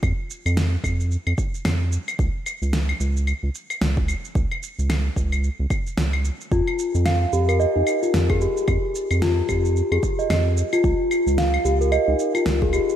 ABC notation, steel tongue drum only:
X:1
M:4/4
L:1/16
Q:"Swing 16ths" 1/4=111
K:Fm
V:1 name="Steel tongue drum"
z16 | z16 | z16 | F4 f z G B e E2 F z A G2- |
G2 z2 F z G3 A z e4 F | F4 f z G B e E2 F z A G2 |]